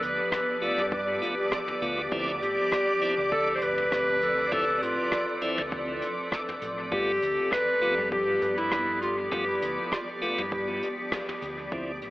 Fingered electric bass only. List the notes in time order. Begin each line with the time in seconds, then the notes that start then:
0.02 D2
0.78 G2
1.82 D2
2.12 D2
2.42 A1
3.18 D2
3.62 D2
4.52 D2
4.82 A1
5.58 D2
6.62 A1
6.92 G2
7.22 D2
7.98 G2
8.42 G2
9.32 G2
9.62 D2
10.38 G2
11.42 D2
11.72 D2
12.02 A1